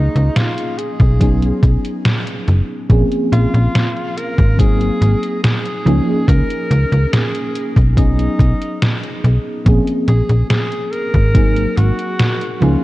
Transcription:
0.00 1.12 F3 medium
0.00 1.12 A#3 medium
0.00 1.13 C#4 medium
0.00 0.37 D#4 loud
0.00 1.13 D#4 medium
0.00 1.13 G#4 loud
0.15 0.30 C#2 medium
0.15 closed hi-hat soft
0.36 0.80 F4 medium
0.36 snare loud
0.36 closed hi-hat loud
0.58 closed hi-hat soft
0.78 1.63 G#4 loud
0.78 closed hi-hat medium
1.00 1.52 B1 medium
1.00 kick loud
1.00 closed hi-hat soft
1.20 2.81 F#3 medium
1.20 2.81 B3 medium
1.20 2.82 C#4 medium
1.20 2.82 D#4 medium
1.20 2.82 G#4 medium
1.20 kick loud
1.20 closed hi-hat medium
1.43 closed hi-hat soft
1.63 1.77 B1 medium
1.63 kick loud
1.63 closed hi-hat medium
1.85 closed hi-hat soft
2.05 snare loud
2.05 closed hi-hat loud
2.27 closed hi-hat soft
2.48 2.62 F#1 medium
2.48 closed hi-hat soft
2.89 3.04 A#1 loud
2.89 4.50 F3 medium
2.89 4.51 A#3 medium
2.89 4.51 C4 medium
2.89 4.51 C#4 medium
2.89 4.52 G#4 medium
2.89 kick loud
2.89 closed hi-hat medium
3.12 closed hi-hat soft
3.32 3.47 A#1 medium
3.32 4.19 F4 loud
3.32 closed hi-hat medium
3.54 3.68 A#1 medium
3.54 closed hi-hat soft
3.75 snare loud
3.75 closed hi-hat loud
3.96 closed hi-hat soft
4.17 4.61 A#4 loud
4.17 closed hi-hat medium
4.38 4.90 G#1 medium
4.38 kick loud
4.38 closed hi-hat soft
4.57 5.77 F#3 medium
4.57 5.77 A#3 medium
4.57 5.77 C4 medium
4.57 5.78 D#4 medium
4.57 5.42 G#4 loud
4.57 5.78 G#4 medium
4.57 kick loud
4.57 closed hi-hat medium
4.81 closed hi-hat soft
5.01 5.16 G#1 medium
5.01 closed hi-hat medium
5.23 closed hi-hat soft
5.43 6.29 G#4 loud
5.43 snare loud
5.43 closed hi-hat loud
5.65 closed hi-hat soft
5.85 6.00 C#2 medium
5.85 7.88 F3 medium
5.85 7.89 A#3 medium
5.85 7.89 C#4 medium
5.85 7.89 D#4 medium
5.85 7.90 G#4 loud
5.85 closed hi-hat soft
6.28 6.42 C#2 loud
6.28 7.14 A#4 loud
6.28 kick loud
6.28 closed hi-hat medium
6.50 closed hi-hat soft
6.71 6.85 C#2 loud
6.71 closed hi-hat medium
6.92 7.06 C#2 medium
6.92 closed hi-hat soft
7.12 7.70 G#4 loud
7.12 snare loud
7.12 closed hi-hat medium
7.35 closed hi-hat soft
7.55 closed hi-hat medium
7.76 8.28 B1 medium
7.76 kick loud
7.76 closed hi-hat soft
7.96 9.57 F#3 medium
7.96 9.57 B3 medium
7.96 9.58 C#4 medium
7.96 9.20 D#4 medium
7.96 9.58 D#4 medium
7.96 9.59 G#4 medium
7.96 kick loud
7.96 closed hi-hat medium
8.19 closed hi-hat soft
8.39 8.54 B1 medium
8.39 kick loud
8.39 closed hi-hat medium
8.62 closed hi-hat soft
8.82 snare loud
8.82 closed hi-hat medium
9.03 closed hi-hat soft
9.24 9.38 B1 medium
9.24 closed hi-hat soft
9.64 9.81 A#1 loud
9.64 11.26 F3 medium
9.64 11.26 A#3 medium
9.64 11.27 C4 medium
9.64 11.27 C#4 medium
9.64 11.28 G#4 medium
9.64 kick loud
9.64 closed hi-hat medium
9.88 closed hi-hat soft
10.08 10.23 A#1 medium
10.08 10.48 G#4 loud
10.08 closed hi-hat medium
10.30 10.44 A#1 medium
10.30 closed hi-hat soft
10.50 10.93 G#4 loud
10.50 snare loud
10.50 closed hi-hat medium
10.72 closed hi-hat soft
10.92 11.79 A#4 loud
10.92 closed hi-hat medium
11.14 11.66 G#1 medium
11.14 kick loud
11.14 closed hi-hat soft
11.34 12.53 F#3 medium
11.34 12.53 A#3 medium
11.34 12.54 C4 medium
11.34 12.54 D#4 medium
11.34 12.54 G#4 medium
11.34 kick loud
11.34 closed hi-hat medium
11.57 closed hi-hat soft
11.77 11.92 G#1 medium
11.77 12.63 F#4 loud
11.77 closed hi-hat medium
11.99 closed hi-hat soft
12.19 snare loud
12.19 closed hi-hat medium
12.41 closed hi-hat soft
12.60 12.76 C#2 medium
12.60 12.84 F3 medium
12.60 12.84 A#3 medium
12.60 12.84 C#4 medium
12.60 12.84 D#4 medium
12.60 12.84 F4 loud
12.60 12.84 G#4 loud
12.60 closed hi-hat soft

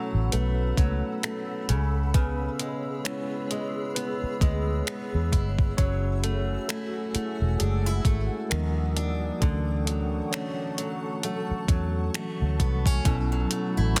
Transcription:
0.00 1.68 B2 medium
0.00 0.77 F#3 medium
0.00 0.32 A3 medium
0.00 0.80 A3 medium
0.00 1.71 C#4 medium
0.00 1.65 E4 medium
0.00 0.78 A4 medium
0.00 1.65 A4 medium
0.00 0.28 C#5 loud
0.00 1.66 F#5 medium
0.00 5.74 B5 medium
0.00 8.47 E6 medium
0.14 0.30 A1 medium
0.32 0.72 B1 medium
0.32 1.22 A3 medium
0.32 0.75 B3 medium
0.32 0.75 B4 medium
0.32 closed hi-hat medium
0.77 1.01 C#2 medium
0.77 1.80 F#3 medium
0.77 1.66 A3 medium
0.77 1.65 A4 medium
0.77 kick loud
0.77 closed hi-hat medium
1.23 1.80 A3 medium
1.23 finger snap loud
1.23 closed hi-hat medium
1.69 2.47 C#2 medium
1.69 2.13 C#3 medium
1.69 5.74 G#4 medium
1.69 5.74 C#5 medium
1.69 closed hi-hat medium
2.14 5.78 C#3 medium
2.14 3.02 B3 medium
2.14 3.08 B4 medium
2.14 kick loud
2.14 closed hi-hat medium
2.59 3.51 G#3 medium
2.59 closed hi-hat medium
3.05 4.42 G#3 medium
3.05 3.95 B3 medium
3.05 3.96 B3 medium
3.05 3.93 C#4 medium
3.05 5.75 E4 medium
3.05 3.99 C#5 loud
3.05 finger snap loud
3.05 closed hi-hat medium
3.51 4.41 G#3 medium
3.51 closed hi-hat medium
3.95 4.86 B3 medium
3.95 4.39 B3 medium
3.95 4.42 B4 loud
3.95 closed hi-hat medium
4.23 muted fingered electric bass stroke soft
4.41 4.81 D2 medium
4.41 5.78 G#3 medium
4.41 5.29 G#3 medium
4.41 5.28 G#4 medium
4.41 kick loud
4.41 closed hi-hat medium
4.87 5.89 B3 medium
4.87 finger snap loud
4.87 closed hi-hat medium
5.14 5.34 E2 medium
5.33 5.72 G1 medium
5.33 6.69 E4 medium
5.33 kick medium
5.33 closed hi-hat medium
5.59 kick medium
5.77 6.56 F#1 medium
5.77 8.61 F#3 medium
5.77 6.65 C#4 medium
5.77 8.48 F#4 medium
5.77 6.71 C#5 loud
5.77 8.48 F#5 medium
5.77 8.48 G#5 medium
5.77 kick loud
5.77 closed hi-hat medium
6.24 7.13 A3 medium
6.24 closed hi-hat medium
6.68 7.13 A3 medium
6.68 7.59 E4 medium
6.68 7.56 A4 medium
6.68 finger snap loud
6.68 closed hi-hat medium
7.14 8.05 A3 medium
7.14 7.78 A3 soft
7.14 7.78 E4 medium
7.14 7.58 G#4 medium
7.14 muted fingered electric bass stroke soft
7.14 closed hi-hat medium
7.41 7.58 E1 medium
7.59 7.99 F#1 medium
7.59 8.47 G#3 medium
7.59 7.86 D4 medium
7.59 8.53 G#4 medium
7.59 closed hi-hat medium
7.86 8.61 E4 medium
8.05 8.28 G#1 medium
8.05 8.62 A3 medium
8.05 kick loud
8.05 closed hi-hat medium
8.50 9.29 D#2 medium
8.50 9.42 D#3 medium
8.50 9.14 F3 medium
8.50 9.14 G3 medium
8.50 9.19 A#3 medium
8.50 9.15 D4 medium
8.50 9.18 A#4 medium
8.50 9.41 A#4 medium
8.50 9.41 G5 medium
8.50 9.41 D6 medium
8.50 9.41 D#6 medium
8.50 finger snap loud
8.50 closed hi-hat medium
8.96 12.46 D4 medium
8.96 closed hi-hat medium
9.40 10.20 D2 loud
9.40 13.05 D3 medium
9.40 10.05 E3 medium
9.40 10.05 F#3 soft
9.40 10.29 A3 medium
9.40 10.06 C#4 medium
9.40 10.35 A4 medium
9.40 13.02 A4 medium
9.40 13.02 F#5 medium
9.40 13.02 A5 medium
9.40 13.02 C#6 medium
9.40 kick loud
9.40 closed hi-hat medium
9.87 10.78 F#3 medium
9.87 closed hi-hat medium
10.32 11.23 A3 medium
10.32 11.20 C#4 medium
10.32 11.26 C#5 medium
10.32 finger snap loud
10.32 closed hi-hat medium
10.78 11.69 F#3 medium
10.78 closed hi-hat medium
11.22 11.68 F#3 medium
11.22 12.14 A3 medium
11.22 12.55 F#4 medium
11.22 closed hi-hat medium
11.51 muted fingered electric bass stroke soft
11.68 12.08 E2 medium
11.68 12.10 E3 soft
11.68 12.11 F#3 soft
11.68 13.32 F#3 medium
11.68 12.11 C#4 medium
11.68 kick loud
11.68 closed hi-hat medium
12.14 13.50 A3 medium
12.14 finger snap loud
12.14 closed hi-hat medium
12.42 12.58 D2 medium
12.60 12.99 C2 medium
12.60 12.86 B3 medium
12.60 kick medium
12.60 closed hi-hat medium
12.86 13.16 C#4 medium
12.86 kick medium
13.04 13.45 B1 loud
13.04 14.00 B2 medium
13.04 14.00 F#3 medium
13.04 14.00 B3 medium
13.04 14.00 C#4 medium
13.04 14.00 E4 medium
13.04 14.00 A4 medium
13.04 14.00 A4 loud
13.04 14.00 F#5 medium
13.04 14.00 B5 medium
13.04 14.00 E6 medium
13.04 kick loud
13.04 closed hi-hat medium
13.32 13.95 F#3 medium
13.51 14.00 A3 medium
13.51 closed hi-hat medium
13.77 13.94 A1 medium
13.77 14.00 E4 medium
13.96 14.00 F#3 medium
13.96 closed hi-hat medium

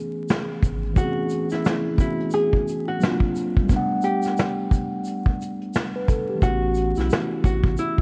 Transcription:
0.00 0.90 E3 medium
0.00 0.92 A3 medium
0.00 0.94 B3 medium
0.00 0.95 C#4 medium
0.00 0.97 G#4 loud
0.29 snare loud
0.29 closed hi-hat medium
0.29 shaker medium
0.63 0.95 G#1 medium
0.63 kick medium
0.63 closed hi-hat medium
0.63 shaker soft
0.85 closed hi-hat soft
0.93 1.93 E3 medium
0.93 1.95 A3 medium
0.93 1.96 B3 medium
0.93 kick loud
0.93 shaker medium
0.97 1.05 C4 soft
0.97 1.48 F#4 loud
0.97 2.00 G#4 medium
0.97 closed hi-hat medium
1.05 1.98 C#4 medium
1.29 closed hi-hat medium
1.29 shaker medium
1.50 1.96 E4 medium
1.50 snare soft
1.50 closed hi-hat soft
1.50 shaker medium
1.65 snare loud
1.65 closed hi-hat medium
1.65 shaker medium
1.94 2.99 E3 soft
1.94 3.00 A3 soft
1.94 3.00 B3 soft
1.98 3.01 C#4 soft
1.98 2.30 E4 medium
1.98 3.02 F#4 medium
1.98 kick loud
1.98 closed hi-hat medium
1.98 shaker soft
2.20 closed hi-hat soft
2.31 2.84 G#4 medium
2.31 closed hi-hat medium
2.31 shaker medium
2.53 kick medium
2.68 closed hi-hat medium
2.68 shaker soft
2.88 3.18 F#4 medium
2.88 closed hi-hat soft
2.99 3.68 F#3 medium
2.99 3.69 A#3 medium
2.99 3.70 C4 medium
2.99 shaker medium
3.03 3.70 D4 medium
3.03 3.71 F4 medium
3.03 snare loud
3.03 closed hi-hat medium
3.20 kick medium
3.36 closed hi-hat medium
3.36 shaker soft
3.57 kick medium
3.57 closed hi-hat soft
3.62 6.34 G3 medium
3.62 6.36 A3 medium
3.69 6.38 B3 medium
3.69 6.39 D4 medium
3.69 kick loud
3.69 closed hi-hat medium
3.69 shaker medium
3.76 5.40 F#5 medium
4.02 5.22 G4 medium
4.02 closed hi-hat medium
4.02 shaker soft
4.23 snare soft
4.23 closed hi-hat soft
4.23 shaker medium
4.37 snare loud
4.37 closed hi-hat medium
4.37 shaker medium
4.71 kick medium
4.71 closed hi-hat medium
4.71 shaker soft
5.04 closed hi-hat medium
5.04 shaker medium
5.26 kick medium
5.41 closed hi-hat medium
5.41 shaker soft
5.61 closed hi-hat soft
5.74 snare loud
5.74 closed hi-hat medium
5.74 shaker medium
5.96 6.08 B4 medium
6.08 6.28 A4 medium
6.08 kick medium
6.08 closed hi-hat medium
6.08 shaker soft
6.29 6.61 G4 medium
6.35 8.02 E3 medium
6.35 8.02 A3 medium
6.42 6.93 A1 loud
6.42 8.02 B3 medium
6.42 8.02 C#4 medium
6.42 6.97 F#4 loud
6.42 kick loud
6.42 closed hi-hat medium
6.42 shaker medium
6.49 8.02 F#4 medium
6.75 closed hi-hat medium
6.75 shaker soft
6.95 7.10 B1 medium
6.95 7.42 E4 medium
6.95 snare soft
6.95 closed hi-hat soft
6.95 shaker soft
7.10 snare loud
7.10 closed hi-hat medium
7.10 shaker medium
7.44 7.76 A1 medium
7.44 7.75 F#4 medium
7.44 kick medium
7.44 closed hi-hat medium
7.44 shaker soft
7.64 kick loud
7.64 closed hi-hat soft
7.77 8.02 E4 medium
7.77 closed hi-hat medium
7.77 shaker medium
7.98 kick medium

